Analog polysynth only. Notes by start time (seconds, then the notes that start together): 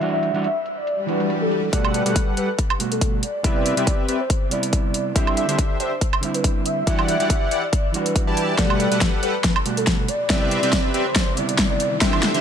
1.73 G3 G4 A4 B4 F#5
2.06 G3 G4 A4 B4 F#5
2.37 G3 G4 A4 B4 F#5
3.44 C4 G4 B4 D5 E5
3.77 C4 G4 B4 D5 E5
4.08 C4 G4 B4 D5 E5
5.16 D3 D4 G4 C5 E5
5.49 D3 D4 G4 C5 E5
5.80 D3 D4 G4 C5 E5
6.87 E3 E4 G4 D5 F#5
7.20 E3 E4 G4 D5 F#5
7.51 E3 E4 G4 D5 F#5
8.27 E3 E4 G4 D5 A5
8.59 G3 G4 A4 B4 F#5
8.92 G3 G4 A4 B4 F#5
9.23 G3 G4 A4 B4 F#5
10.30 C4 G4 B4 D5 E5
10.63 C4 G4 B4 D5 E5
10.94 C4 G4 B4 D5 E5
12.01 D3 D4 G4 C5 E5
12.34 D3 D4 G4 C5 E5